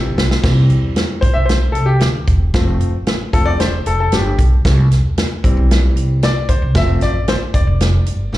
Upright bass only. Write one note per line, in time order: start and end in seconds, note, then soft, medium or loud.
0.00 0.13 A1 loud
0.18 0.28 B1 medium
0.43 0.65 C2 loud
0.69 1.02 E2 medium
1.22 1.33 A1 loud
1.35 1.68 B1 medium
1.75 1.97 C2 medium
2.01 2.23 D2 loud
2.28 2.50 E1 medium
2.54 2.76 F1 loud
2.80 3.24 A1 medium
3.33 3.77 E1 medium
3.86 4.08 F1 medium
4.12 4.34 G1 medium
4.39 4.60 B1 medium
4.65 4.87 C2 loud
4.91 5.24 E2 medium
5.44 5.55 A1 medium
5.57 5.89 B1 medium
5.96 6.29 C2 medium
6.49 6.60 D2 medium
6.62 6.73 C2 medium
6.75 7.02 F1 medium
7.02 7.34 A1 medium
7.54 7.65 E1 medium
7.67 8.00 F1 medium
8.06 8.28 G1 medium
8.32 8.38 A1 medium